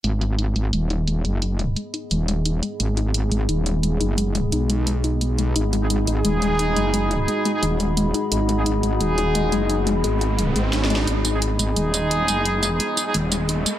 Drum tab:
HH |x--x--x--x--x--x--x--x--|x--x--x--x--x--x--x--x--|x--x--x--x--x--x--x--x--|x--x--x--x--x--x--x--x--|
TB |------------------------|------------------------|------------------------|------------------------|
SD |------------------------|------------------------|------------------------|------------------------|

HH |x--x--x--x--x--x--x--x--|x--x--x--x--x--x--x--x--|x--x--x--x--x--x--x--x--|x--x--x--x--x--x--x--x--|
TB |------------------------|------------------------|------------------------|------------------------|
SD |------------------------|------------------------|------------------------|------------------o-o-o-|

HH |x--x--x--x--x--x--x--x--|x--x--x--x--x--x--x--x--|
TB |---x-----x-----x-----x--|---x-----x-----x-----x--|
SD |------------------------|------------------------|